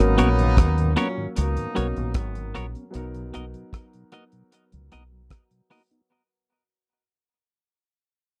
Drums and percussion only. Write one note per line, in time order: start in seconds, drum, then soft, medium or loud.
0.18 closed hi-hat medium
0.39 closed hi-hat soft
0.57 kick loud
0.57 cross-stick loud
0.57 closed hi-hat medium
0.78 closed hi-hat soft
0.97 closed hi-hat medium
1.36 closed hi-hat medium
1.57 closed hi-hat soft
1.76 closed hi-hat medium
1.96 closed hi-hat soft
2.14 kick loud
2.14 cross-stick loud
2.14 closed hi-hat medium
2.35 closed hi-hat soft
2.55 cross-stick medium
2.55 closed hi-hat medium
2.75 closed hi-hat soft
2.94 closed hi-hat medium
3.15 closed hi-hat soft
3.34 closed hi-hat medium
3.54 closed hi-hat soft
3.73 kick loud
3.73 cross-stick loud
3.73 closed hi-hat medium
3.93 closed hi-hat soft
4.12 closed hi-hat medium
4.32 closed hi-hat soft
4.52 closed hi-hat medium
4.72 closed hi-hat soft
4.92 closed hi-hat medium
5.30 kick loud
5.30 cross-stick loud
5.30 closed hi-hat medium
5.51 closed hi-hat soft
5.71 open hi-hat medium
5.91 closed hi-hat soft